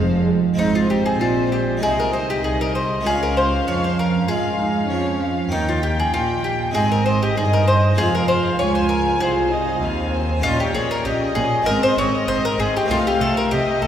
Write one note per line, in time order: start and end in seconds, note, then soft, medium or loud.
0.00 0.51 F1 medium
0.00 0.48 F2 medium
0.00 0.51 F2 medium
0.00 0.52 G#3 medium
0.00 0.53 C4 medium
0.00 0.23 F4 medium
0.00 0.53 F4 medium
0.00 0.23 C5 medium
0.00 0.23 F5 loud
0.27 0.35 G#3 medium
0.54 1.16 G#1 soft
0.54 1.16 G#2 medium
0.54 1.76 G#3 soft
0.54 1.77 C4 soft
0.54 1.78 D#4 soft
0.54 1.77 D#5 soft
0.58 1.16 G#2 soft
0.58 1.78 C4 soft
0.58 0.73 D#4 medium
0.58 1.78 C5 soft
0.75 0.89 F4 soft
0.90 1.04 G4 medium
1.06 1.20 G#4 medium
1.20 1.82 A#1 soft
1.20 1.78 A#2 soft
1.20 1.82 A#2 soft
1.20 1.49 F4 soft
1.52 1.80 G4 soft
1.77 2.99 G#3 soft
1.77 3.00 D#4 soft
1.77 3.03 D#5 soft
1.81 2.42 C2 soft
1.81 2.44 C3 soft
1.81 2.40 C3 soft
1.81 2.43 D#4 soft
1.81 1.97 G#4 medium
1.81 3.03 D#5 medium
2.00 2.13 A#4 medium
2.13 2.27 C5 medium
2.30 2.44 G4 medium
2.43 3.01 C2 soft
2.43 3.04 C2 soft
2.43 3.05 D#4 soft
2.43 2.58 G#4 soft
2.61 2.75 A#4 medium
2.75 3.04 C5 medium
3.01 4.28 G#3 soft
3.01 5.46 C#4 soft
3.01 5.47 F4 soft
3.05 3.66 C#2 soft
3.05 3.66 C#3 soft
3.05 3.63 C#3 soft
3.05 4.27 C#4 soft
3.05 3.20 G#4 medium
3.05 4.27 F5 medium
3.05 4.90 F5 soft
3.23 3.36 A#4 medium
3.37 3.65 C5 medium
3.67 4.27 F2 soft
3.67 4.27 F3 soft
3.67 4.25 F3 soft
3.67 3.82 C#5 medium
3.84 3.98 C5 soft
3.99 4.27 A#4 medium
4.28 4.89 G#2 medium
4.28 4.89 G#3 soft
4.28 4.86 G#3 soft
4.28 4.60 F4 medium
4.28 5.48 G#4 medium
4.28 4.89 F5 soft
4.60 4.91 D#4 soft
4.90 5.50 F2 soft
4.90 5.51 F3 medium
4.90 5.48 F3 soft
4.90 5.51 C#4 soft
4.90 5.21 C#5 soft
4.90 5.51 F5 soft
5.21 5.52 F5 soft
5.49 6.12 D#2 soft
5.49 6.12 D#3 soft
5.49 6.10 D#3 soft
5.49 6.75 A#3 soft
5.49 6.70 C#4 soft
5.49 6.71 D#4 soft
5.49 5.66 D#4 medium
5.49 6.73 G5 medium
5.49 6.75 G5 soft
5.69 5.82 F4 soft
5.83 5.97 G4 medium
6.00 6.13 G#4 medium
6.13 6.74 A#1 soft
6.13 6.74 A#2 soft
6.13 6.71 A#2 soft
6.13 6.42 F4 medium
6.44 6.73 G4 medium
6.71 7.36 G#1 medium
6.71 7.35 G#2 medium
6.71 7.93 G#3 soft
6.71 7.93 C4 soft
6.71 7.37 C4 soft
6.71 7.94 D#4 soft
6.71 6.89 G#4 medium
6.71 7.98 D#5 medium
6.76 7.33 G#2 soft
6.92 7.05 A#4 medium
7.06 7.20 C5 medium
7.23 7.36 G4 medium
7.37 7.98 G1 soft
7.37 7.98 G2 soft
7.37 7.94 G2 soft
7.37 7.98 D#4 soft
7.37 7.51 G#4 medium
7.53 7.67 A#4 medium
7.67 7.96 C5 medium
7.95 8.58 F1 soft
7.95 8.58 F2 medium
7.95 8.56 G#3 soft
7.95 8.56 C4 soft
7.95 10.39 F4 soft
7.95 9.18 F4 medium
7.95 8.12 G#4 medium
7.95 8.58 F5 soft
7.95 8.60 F5 medium
7.99 8.56 F2 soft
8.15 8.28 A#4 medium
8.28 8.57 C5 medium
8.59 9.20 C#2 soft
8.59 9.20 C#2 medium
8.59 9.17 C#2 soft
8.59 8.73 C#5 medium
8.59 9.79 F5 soft
8.59 9.19 G#5 medium
8.75 8.89 C5 medium
8.89 9.18 A#4 medium
9.20 9.78 C2 soft
9.20 9.81 C2 medium
9.20 9.51 F4 medium
9.20 10.39 G#4 medium
9.20 9.51 C5 medium
9.51 9.82 D#4 medium
9.51 9.82 D#5 medium
9.81 10.44 D#2 medium
9.81 10.40 D#2 soft
9.81 10.43 C4 medium
9.81 10.12 F5 medium
9.81 10.43 G#5 medium
10.12 10.43 C5 soft
10.40 10.52 A#1 medium
10.40 10.51 A#2 medium
10.40 11.61 A#3 soft
10.40 11.61 C#4 soft
10.40 10.74 C#4 medium
10.40 11.62 D#4 soft
10.40 10.57 F4 medium
10.40 11.03 C#5 medium
10.40 10.73 D#5 medium
10.45 10.72 A#2 soft
10.60 10.74 G4 medium
10.74 10.82 A#1 soft
10.74 10.82 A#2 medium
10.74 11.02 A#2 soft
10.74 11.04 C#4 medium
10.74 10.89 G#4 medium
10.74 11.04 D#5 soft
10.91 11.04 A#4 medium
11.05 11.13 A#1 soft
11.05 11.13 A#2 soft
11.05 11.33 A#2 soft
11.05 11.35 C#4 soft
11.05 11.33 G4 medium
11.05 11.66 D#5 medium
11.05 11.35 D#5 soft
11.35 11.44 A#1 medium
11.35 11.44 A#2 medium
11.35 11.63 A#2 medium
11.35 11.66 C#4 soft
11.35 11.64 G#4 medium
11.35 11.65 D#5 medium
11.62 11.74 G#1 medium
11.62 12.83 C4 soft
11.62 12.84 D#4 soft
11.62 11.80 A#4 medium
11.62 11.96 D#5 medium
11.66 11.75 G#2 medium
11.66 11.94 G#2 medium
11.66 11.96 C4 medium
11.66 12.87 D#5 medium
11.83 11.97 C5 medium
11.97 12.05 G#1 medium
11.97 12.25 G#2 soft
11.97 12.06 G#2 medium
11.97 12.27 C4 soft
11.97 12.26 C#5 medium
11.97 12.27 D#5 medium
12.28 12.36 G#1 medium
12.28 12.55 G#2 soft
12.28 12.37 G#2 medium
12.28 12.57 C4 medium
12.28 12.42 C5 medium
12.28 12.58 D#5 medium
12.45 12.58 A#4 medium
12.58 12.67 G#1 medium
12.58 12.86 G#2 soft
12.58 12.67 G#2 medium
12.58 12.89 C4 medium
12.58 12.73 G#4 medium
12.58 12.89 D#5 soft
12.77 12.90 G4 medium
12.85 13.87 A3 soft
12.85 13.87 C4 soft
12.85 13.87 D#4 soft
12.85 13.49 F5 medium
12.89 12.98 C2 medium
12.89 12.98 C3 medium
12.89 13.17 C3 soft
12.89 13.19 A3 medium
12.89 13.04 F4 medium
12.89 13.19 D#5 medium
13.07 13.20 G4 medium
13.20 13.29 C2 soft
13.20 13.28 C3 medium
13.20 13.48 C3 soft
13.20 13.50 A3 medium
13.20 13.35 A4 medium
13.20 13.50 D#5 medium
13.37 13.51 A#4 medium
13.51 13.60 C2 soft
13.51 13.59 C3 medium
13.51 13.79 C3 soft
13.51 13.81 A3 soft
13.51 13.80 G4 medium
13.51 13.87 D#5 medium
13.51 13.81 D#5 soft
13.82 13.87 C2 medium
13.82 13.87 C3 medium
13.82 13.87 A3 medium
13.82 13.87 A4 medium
13.82 13.87 D#5 medium